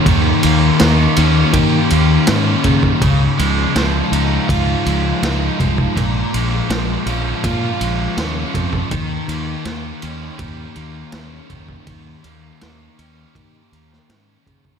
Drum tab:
RD |x-x-x-x-x-x-x-x-|x-x-x-x-x-x-x-x-|x-x-x-x-x-x-x-x-|x-x-x-x-x-x-x-x-|
SD |----o-------o---|----o-------o---|----o-------o---|----o-------o---|
BD |o-------o-----oo|o-------o-----oo|o-------o-----oo|o-------o-----oo|

RD |x-x-x-x-x-x-x-x-|
SD |----o------oo---|
BD |o-------o-----oo|